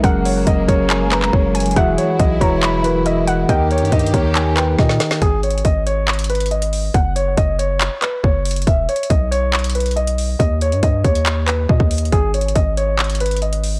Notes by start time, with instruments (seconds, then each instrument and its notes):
Already playing: string section G#3
0.03 808-style bass F#1, tine electric piano F#3 C#4 G#4 A#4, string section F#3 A#3, synth pluck F#5, grand piano F#5, kick, closed hi-hat
0.25 grand piano C#5, open hi-hat
0.47 808-style bass F#1, grand piano D#5, kick, closed hi-hat
0.67 808-style bass F#1, tine electric piano F#3 C#4 G#4 A#4, grand piano C#5, kick, closed hi-hat
0.90 synth pluck G#5, clap, closed hi-hat
1.11 grand piano B4, synth pluck A#5, clap, closed hi-hat
1.22 clap
1.33 808-style bass F#1, grand piano C#5, kick
1.55 synth pluck G#5, closed hi-hat
1.60 closed hi-hat
1.66 closed hi-hat
1.71 closed hi-hat
1.76 808-style bass E1, tine electric piano E3 E4 F#4 G#4, string section E4, grand piano E5, synth pluck F#5, kick, closed hi-hat
1.98 grand piano C#5, closed hi-hat
2.19 808-style bass B1, grand piano D#5, kick, closed hi-hat
2.40 808-style bass E1, tine electric piano E3 E4 F#4 B4, grand piano C#5, synth pluck A#5, kick, closed hi-hat
2.63 synth pluck B5, clap, closed hi-hat
2.84 tine electric piano E3 E4 F#4 A#4, grand piano B4, closed hi-hat
3.06 grand piano D#5, synth pluck E5, closed hi-hat
3.27 synth pluck F#5, closed hi-hat
3.48 808-style bass D#2, tine electric piano D#3 D#4 G4 A#4, string section D#3 A#3 G4, grand piano D#5, synth pluck G5, kick, closed hi-hat
3.71 grand piano C#5, closed hi-hat
3.78 808-style bass G2, closed hi-hat
3.85 closed hi-hat
3.92 808-style bass G2, grand piano D#5, kick, closed hi-hat
3.99 closed hi-hat
4.07 closed hi-hat
4.13 808-style bass D#2, tine electric piano D#3 D#4 G4 A#4, grand piano C#5, kick, closed hi-hat
4.35 synth pluck G#5, clap, closed hi-hat
4.56 grand piano B4, synth pluck G5, clap, closed hi-hat
4.79 808-style bass A#2, grand piano D#5, kick, snare
4.89 snare
5.00 snare, closed hi-hat
5.11 snare
5.22 808-style bass G#1, grand piano G#4, kick, closed hi-hat
5.43 grand piano C#5, closed hi-hat
5.51 closed hi-hat
5.58 closed hi-hat
5.65 808-style bass G#1, grand piano D#5, kick, closed hi-hat
5.86 grand piano C#5, closed hi-hat
6.08 clap, closed hi-hat
6.13 closed hi-hat
6.19 closed hi-hat
6.24 closed hi-hat
6.30 grand piano B4, closed hi-hat
6.35 closed hi-hat
6.40 closed hi-hat
6.46 closed hi-hat
6.51 grand piano D#5, closed hi-hat
6.62 closed hi-hat
6.73 open hi-hat
6.94 808-style bass F#1, grand piano F#5, kick, closed hi-hat
7.16 grand piano C#5, closed hi-hat
7.37 808-style bass F#1, grand piano D#5, kick, closed hi-hat
7.59 grand piano C#5, closed hi-hat
7.81 clap, closed hi-hat
8.02 grand piano B4, clap, closed hi-hat
8.23 808-style bass F#1, grand piano C#5, kick
8.45 closed hi-hat, open hi-hat
8.51 closed hi-hat
8.56 closed hi-hat
8.62 closed hi-hat
8.67 808-style bass E1, grand piano E5, kick, closed hi-hat
8.89 grand piano C#5, closed hi-hat
8.96 closed hi-hat
9.03 closed hi-hat
9.10 808-style bass B1, grand piano D#5, kick, closed hi-hat
9.31 grand piano C#5, closed hi-hat
9.53 clap, closed hi-hat
9.59 closed hi-hat
9.64 closed hi-hat
9.70 closed hi-hat
9.75 grand piano B4, closed hi-hat
9.80 closed hi-hat
9.86 closed hi-hat
9.91 closed hi-hat
9.96 grand piano D#5, closed hi-hat
10.07 closed hi-hat
10.18 open hi-hat
10.39 808-style bass D#2, grand piano D#5, kick, closed hi-hat
10.61 grand piano C#5, closed hi-hat
10.72 808-style bass G2, closed hi-hat
10.83 808-style bass G2, grand piano D#5, kick, closed hi-hat
11.04 808-style bass D#2, grand piano C#5, kick, closed hi-hat
11.15 closed hi-hat
11.26 clap, closed hi-hat
11.47 grand piano B4, clap, closed hi-hat
11.69 808-style bass A#2, grand piano D#5, kick
11.80 808-style bass D#2, kick
11.91 closed hi-hat, open hi-hat
11.98 closed hi-hat
12.05 closed hi-hat
12.12 808-style bass G#1, grand piano G#4, kick, closed hi-hat
12.34 grand piano C#5, closed hi-hat
12.41 closed hi-hat
12.48 closed hi-hat
12.55 808-style bass G#1, grand piano D#5, kick, closed hi-hat
12.77 grand piano C#5, closed hi-hat
12.99 clap, closed hi-hat
13.04 closed hi-hat
13.10 closed hi-hat
13.15 closed hi-hat
13.20 grand piano B4, closed hi-hat
13.26 closed hi-hat
13.31 closed hi-hat
13.37 closed hi-hat
13.42 grand piano D#5, closed hi-hat
13.53 closed hi-hat
13.64 open hi-hat